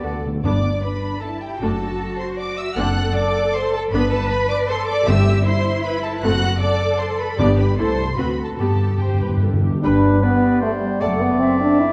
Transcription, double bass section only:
0.03 D2
0.44 G1
1.61 F#1
2.77 F#1
3.92 G1
5.07 G1
6.22 F#1
7.39 G1
7.78 C2
8.19 D2
8.59 G2
9.83 G1
11.01 F#1

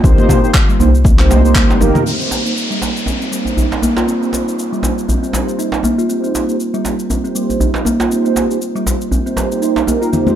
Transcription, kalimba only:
0.04 C4
0.18 C4
0.69 G3
1.05 C4
1.19 C4
1.30 G3
1.55 A#3
1.81 D#4
1.95 D#4
2.06 C4
2.20 C4
2.71 G3
3.07 C4
3.21 C4
3.32 G3
3.57 D#4
3.82 A#3
3.97 F4
4.07 C4
4.22 C4
4.72 G3
5.08 C4
5.23 C4
5.34 G3
5.59 D#4
5.84 A#3
5.98 F4
6.09 C4
6.24 C4
6.74 G3
7.10 C4
7.24 C4
7.35 G3
7.60 D#4
7.86 A#3
8.00 F4
8.11 C4
8.25 C4
8.75 G3
9.12 C4
9.26 C4
9.37 G3
9.62 D#4
9.87 A#3
10.02 F4
10.13 C4
10.27 C4

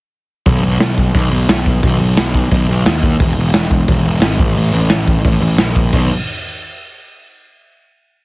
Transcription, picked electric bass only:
0.47 B1
0.63 B1
0.80 B1
1.15 B1
1.31 B1
1.49 B1
1.83 B1
2.00 B1
2.17 B1
2.51 B1
2.69 B1
2.86 D#2
3.20 E1
3.37 E1
3.53 E1
3.88 E1
4.05 E1
4.22 G#1
4.39 A1
4.57 A1
4.73 A1
4.90 A1
5.25 A1
5.41 A1
5.59 A#1
5.93 B1

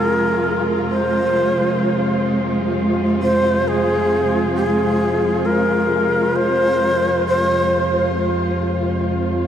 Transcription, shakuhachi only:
Already playing: A#4
0.90 C5
3.23 C5
3.68 G#4
4.56 G#4
5.45 A#4
6.36 C5
7.27 C5

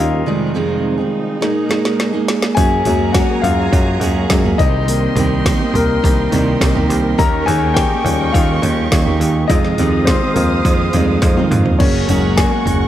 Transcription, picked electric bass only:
Already playing: D#2
2.57 F#2
2.86 F#2
3.44 F#2
3.73 F#2
4.00 F#2
4.30 F#2
4.59 C2
5.16 C2
5.74 C2
6.04 C2
6.32 C2
6.61 C2
6.90 C2
7.19 D#2
7.47 D#2
8.05 D#2
8.35 D#2
8.62 D#2
8.92 D#2
9.20 D#2
9.50 F2
9.79 F2
10.36 F2
10.65 F2
10.94 F2
11.22 F2
11.51 F2
11.80 F#1
12.08 F#1
12.66 F#1

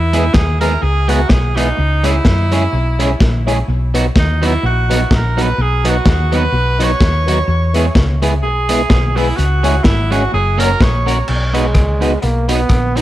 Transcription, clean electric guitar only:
0.13 G#3 B3 E4 G#4
0.61 G#3 B3 E4 G#4
1.08 G#3 B3 E4 G#4
1.30 muted clean electric guitar stroke
1.56 G#3 B3 E4 G#4
2.04 G#3 C#4 E4 G#4
2.52 G#3 C#4 E4 G#4
2.99 G#3 C#4 E4 G#4
3.47 G#3 C#4 E4 G#4
3.94 F#3 B3 D#4 F#4
4.42 F#3 B3 D#4 F#4
4.90 F#3 B3 D#4 F#4
5.11 muted clean electric guitar stroke
5.37 F#3 B3 D#4 F#4
5.84 F#3 B3 D#4 F#4
6.32 F#3 B3 D#4 F#4
6.80 F#3 B3 D#4 F#4
7.28 F#3 B3 D#4 F#4
7.75 G#3 B3 E4 G#4
8.22 G#3 B3 E4 G#4
8.69 G#3 B3 E4 G#4
8.89 muted clean electric guitar stroke
9.16 G#3 B3 E4 G#4
9.63 G#3 C#4 E4 G#4
10.11 G#3 C#4 E4 G#4
10.58 A#3 C#4 F#4 A#4
11.06 A#3 C#4 F#4 A#4
11.53 B3 D#4 F#4 B4
12.01 B3 D#4 F#4 B4
12.49 B3 D#4 F#4 B4
12.96 B3 D#4 F#4 B4

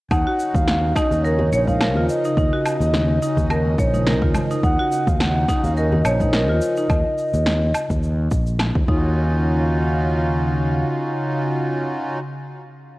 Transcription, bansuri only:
0.11 F#5
0.55 F5
0.96 D#5
1.24 C#5
1.67 F5
2.08 D#5
4.64 F#5
5.08 F5
5.21 F#5
5.60 F5 F#5
5.77 D#5

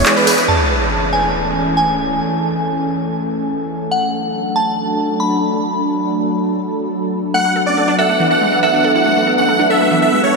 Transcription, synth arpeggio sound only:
0.06 G#4
0.16 D4
0.27 G#4
0.38 E4
7.34 A3
7.45 A3
7.56 A4
7.66 C#4
7.77 A4
7.88 D4
7.99 A4
8.09 A3
8.20 E3
8.31 A4
8.41 G#3
8.52 A4
8.63 A4
8.74 D4
8.84 A4
8.95 E4
9.06 A3
9.16 A3
9.27 A4
9.38 C#4
9.49 A4
9.59 D4
9.70 A4
9.81 A3
9.91 E3
10.02 A4
10.13 G#3
10.24 A4

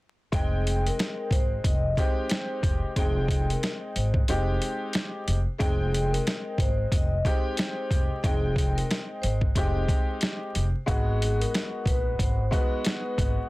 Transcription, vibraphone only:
0.32 G#4
0.87 A#4
1.32 C5
1.64 D#5
1.97 C5
2.97 G#4
3.51 A#4
3.96 C5
5.59 G#4
6.11 A#4
6.59 C5
6.95 D#5
7.27 C5
8.23 G#4
8.75 A#4
9.22 C5
10.89 G#4
11.39 A#4
11.86 B4
12.20 C5
12.52 B4

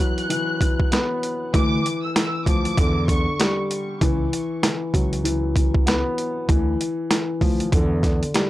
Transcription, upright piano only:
Already playing: E3
0.00 F#3
0.30 E3
0.62 E3
0.92 B3
1.54 E3
2.16 E3
2.47 F3
2.78 D3
3.08 D3
3.39 G3
4.02 E3
4.63 E3
4.93 F#3
5.24 E3
5.56 E3
5.86 B3
6.49 E3
7.11 E3
7.41 F3
7.73 D3
8.03 D3
8.34 G3

